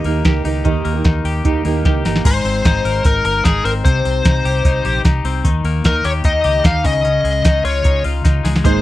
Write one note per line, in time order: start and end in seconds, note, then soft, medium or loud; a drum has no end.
0.00 0.64 D#3 medium
0.00 0.44 D#4 medium
0.00 0.24 G4 medium
0.04 0.21 D#2 loud
0.04 0.22 A#3 medium
0.04 0.84 A#3 medium
0.04 0.24 D#4 medium
0.04 0.25 G4 medium
0.04 0.26 A#4 medium
0.04 open hi-hat medium
0.24 0.41 C#2 medium
0.24 0.43 A#3 medium
0.24 0.43 D#4 medium
0.24 1.24 G4 medium
0.24 0.44 G4 medium
0.24 0.45 A#4 medium
0.24 kick loud
0.24 snare loud
0.24 closed hi-hat medium
0.44 0.61 C#2 medium
0.44 0.64 A#3 medium
0.44 0.64 D#4 medium
0.44 1.04 D#4 medium
0.44 0.64 G4 medium
0.44 0.65 A#4 medium
0.44 open hi-hat medium
0.64 0.81 D#2 medium
0.64 0.95 D#3 medium
0.64 2.25 D#3 medium
0.64 0.95 A#3 medium
0.64 0.95 D#4 loud
0.64 0.94 G4 loud
0.64 0.93 A#4 medium
0.64 kick loud
0.64 closed hi-hat medium
0.85 1.02 D#2 medium
0.85 1.65 A#3 medium
0.85 open hi-hat medium
0.94 1.44 D#4 soft
0.94 1.45 G4 medium
0.94 1.46 A#4 medium
1.04 1.21 D#2 loud
1.04 1.45 D#4 medium
1.04 kick loud
1.04 snare loud
1.04 closed hi-hat medium
1.24 1.41 D#2 medium
1.24 1.84 G4 medium
1.24 open hi-hat medium
1.44 1.61 D#2 loud
1.44 1.63 A#3 medium
1.44 1.64 D#4 medium
1.44 2.05 D#4 medium
1.44 1.65 G4 medium
1.44 1.66 A#4 medium
1.44 kick loud
1.44 closed hi-hat medium
1.64 1.81 D#2 medium
1.64 1.83 A#3 medium
1.64 2.29 A#3 medium
1.64 1.84 D#4 medium
1.64 1.85 G4 medium
1.64 1.86 A#4 medium
1.64 open hi-hat medium
1.84 2.01 C#2 medium
1.84 2.03 A#3 medium
1.84 2.04 D#4 medium
1.84 2.29 G4 medium
1.84 2.05 G4 medium
1.84 2.06 A#4 medium
1.84 kick loud
1.84 snare medium
1.84 closed hi-hat medium
2.04 2.21 G1 medium
2.04 2.25 A#3 medium
2.04 2.25 D#4 medium
2.04 2.65 D#4 medium
2.04 2.26 G4 medium
2.04 2.26 A#4 medium
2.04 snare loud
2.04 open hi-hat medium
2.16 snare medium
2.25 2.41 G#1 medium
2.25 3.85 G#3 medium
2.25 2.66 C5 loud
2.25 kick loud
2.25 open hi-hat medium
2.25 crash loud
2.44 2.61 G#1 medium
2.44 3.64 C4 medium
2.44 open hi-hat medium
2.65 2.81 G#1 loud
2.65 3.05 D#4 medium
2.65 3.07 C5 loud
2.65 kick loud
2.65 snare loud
2.65 open hi-hat medium
2.85 3.01 G#1 loud
2.85 3.24 A#4 medium
2.85 open hi-hat medium
3.05 3.21 G#1 loud
3.05 3.44 D#4 medium
3.05 3.24 A#4 loud
3.05 kick loud
3.05 open hi-hat medium
3.25 3.41 G1 medium
3.25 3.89 A#4 medium
3.25 3.44 A#4 medium
3.25 open hi-hat medium
3.45 3.61 G#1 medium
3.45 4.25 D#4 medium
3.45 3.65 G#4 medium
3.45 kick loud
3.45 snare loud
3.45 open hi-hat medium
3.65 3.81 G#1 loud
3.65 3.89 C4 medium
3.65 3.71 A#4 medium
3.65 open hi-hat medium
3.85 4.01 C2 loud
3.85 5.45 C3 medium
3.85 5.01 C5 medium
3.85 kick loud
3.85 open hi-hat medium
4.05 4.21 C2 medium
4.05 5.24 C4 medium
4.05 open hi-hat medium
4.25 4.41 C2 loud
4.25 4.65 D#4 medium
4.25 kick loud
4.25 snare loud
4.25 open hi-hat medium
4.45 4.61 C2 loud
4.45 4.85 G4 medium
4.45 open hi-hat medium
4.65 4.81 C2 loud
4.65 5.05 D#4 medium
4.65 kick loud
4.65 open hi-hat medium
4.85 5.01 A#1 medium
4.85 5.49 G4 medium
4.85 open hi-hat medium
5.05 5.21 C2 medium
5.05 5.85 D#4 medium
5.05 kick loud
5.05 snare loud
5.05 open hi-hat medium
5.24 5.41 C2 loud
5.24 5.49 C4 medium
5.24 open hi-hat medium
5.44 5.61 D#2 loud
5.44 7.07 D#3 medium
5.44 kick loud
5.44 open hi-hat medium
5.64 5.81 D#2 loud
5.64 6.89 A#3 medium
5.64 open hi-hat medium
5.84 6.01 D#2 loud
5.84 6.24 D#4 medium
5.84 6.06 A#4 medium
5.84 kick loud
5.84 snare loud
5.84 open hi-hat medium
6.04 6.21 D#2 medium
6.04 6.43 G4 medium
6.04 6.10 C#5 medium
6.04 open hi-hat medium
6.24 6.41 D#2 loud
6.24 6.64 D#4 medium
6.24 6.66 D#5 loud
6.24 kick loud
6.24 open hi-hat medium
6.44 6.61 C#2 loud
6.44 6.88 G4 medium
6.44 open hi-hat medium
6.64 6.84 D#2 loud
6.64 7.08 D#4 medium
6.64 6.86 F5 loud
6.64 kick loud
6.64 snare loud
6.64 open hi-hat medium
6.84 7.17 C#2 loud
6.84 7.03 C#3 medium
6.84 7.64 D#5 loud
6.84 kick loud
6.84 open hi-hat loud
7.04 8.64 C#3 medium
7.04 open hi-hat medium
7.24 7.41 C#2 medium
7.24 8.43 G#3 medium
7.24 open hi-hat medium
7.45 7.61 C#2 loud
7.45 7.85 D#4 medium
7.45 kick loud
7.45 snare loud
7.45 open hi-hat medium
7.64 7.81 C#2 loud
7.64 8.03 F4 medium
7.64 8.02 C#5 medium
7.64 open hi-hat medium
7.84 8.01 C#2 loud
7.84 8.24 D#4 medium
7.84 kick loud
7.84 open hi-hat medium
8.04 8.21 C#2 medium
8.04 8.68 F4 medium
8.04 open hi-hat medium
8.24 8.41 C#2 loud
8.24 8.82 D#4 medium
8.24 kick loud
8.24 snare medium
8.24 open hi-hat medium
8.44 8.61 C#2 loud
8.44 8.63 G#3 medium
8.44 snare loud
8.44 open hi-hat medium
8.56 snare medium
8.64 8.81 G#1 loud
8.64 8.82 G#3 medium
8.64 8.82 A#3 medium
8.64 8.82 D#4 medium
8.64 8.82 G#4 loud
8.64 8.82 C5 loud
8.64 kick loud
8.64 open hi-hat medium